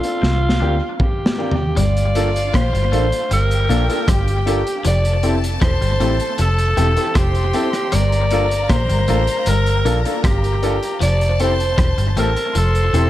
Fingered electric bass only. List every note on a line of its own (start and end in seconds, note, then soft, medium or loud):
0.23 0.58 C2 loud
0.61 0.79 D2 loud
1.77 2.50 G1 medium
2.54 2.72 A#1 medium
2.74 2.91 G1 medium
2.93 3.11 A1 loud
3.31 3.67 G1 medium
3.69 3.87 A#1 medium
4.08 4.62 G1 loud
4.85 5.58 F1 loud
5.62 5.80 E1 loud
5.82 5.99 G1 loud
6.00 6.18 A1 medium
6.39 6.75 F1 loud
6.78 6.96 E1 medium
7.16 7.51 F1 loud
7.93 8.66 G1 medium
8.70 8.88 A#1 loud
8.90 9.07 G1 loud
9.09 9.27 A1 loud
9.47 9.82 G1 loud
9.85 10.03 A#1 loud
10.24 10.78 G1 medium
11.02 11.74 F1 loud
11.78 11.96 E1 loud
11.98 12.15 G1 loud
12.17 12.35 A1 medium
12.55 12.91 F1 loud
12.93 13.10 E1 medium